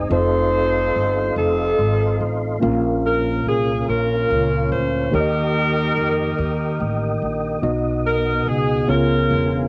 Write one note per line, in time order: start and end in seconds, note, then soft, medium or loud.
0.00 2.58 D#5 medium
0.10 0.91 F1 loud
0.10 2.57 C4 medium
0.10 2.57 D#4 medium
0.10 2.58 F4 medium
0.10 2.60 A4 medium
0.10 2.58 A4 medium
0.10 1.34 A4 medium
0.10 2.59 C5 medium
0.10 1.33 C5 loud
0.10 5.09 F5 medium
0.10 2.60 C6 medium
0.14 1.34 D#4 medium
0.95 1.34 G1 medium
1.36 1.75 F1 medium
1.36 2.59 C4 medium
1.36 2.59 D#4 medium
1.36 2.31 A4 loud
1.79 2.17 G#1 medium
2.20 2.59 A1 medium
2.60 3.42 A#1 loud
2.60 3.83 A#2 medium
2.60 5.08 A#3 medium
2.60 5.08 C#4 medium
2.60 5.10 C#4 medium
2.60 5.08 F4 medium
2.60 7.59 A#4 medium
2.60 5.09 A#4 medium
2.60 5.09 F5 medium
3.07 3.44 A#4 medium
3.46 3.84 C2 medium
3.46 3.85 G#4 medium
3.88 4.26 A#1 medium
3.88 5.09 C#4 medium
3.88 5.09 F4 medium
3.88 4.72 A#4 medium
4.31 4.68 C#2 loud
4.72 5.10 D2 medium
4.72 5.10 C5 loud
5.11 5.93 D#2 loud
5.11 6.34 D#3 medium
5.11 7.58 A#3 medium
5.11 7.58 D#4 medium
5.11 7.18 D#4 medium
5.11 7.59 G4 medium
5.11 7.18 G4 medium
5.11 7.59 A#4 medium
5.11 7.18 A#4 loud
5.11 5.20 C#5 medium
5.11 8.85 D#5 medium
5.11 7.61 G5 medium
5.11 8.85 D#6 medium
5.20 7.62 D#5 medium
5.97 6.35 F2 medium
6.38 6.76 D#2 medium
6.80 7.18 A1 medium
7.22 7.60 A#1 medium
7.62 8.42 B1 loud
7.62 8.84 B2 medium
7.62 8.86 B3 medium
7.62 9.68 B3 medium
7.62 8.88 D#4 medium
7.62 8.88 F#4 medium
7.62 8.88 D#5 medium
7.62 8.87 F#5 medium
8.07 8.44 A#4 medium
8.46 8.84 C#2 medium
8.46 8.88 G#4 loud
8.87 9.26 C#2 medium
8.87 9.68 C#3 medium
8.87 9.68 B3 medium
8.87 9.68 C#4 medium
8.87 9.68 F4 medium
8.87 9.68 G#4 medium
8.87 9.68 A#4 medium
8.87 9.68 C#5 medium
8.87 9.68 F5 medium
8.87 9.68 G#5 medium
9.30 9.68 E1 loud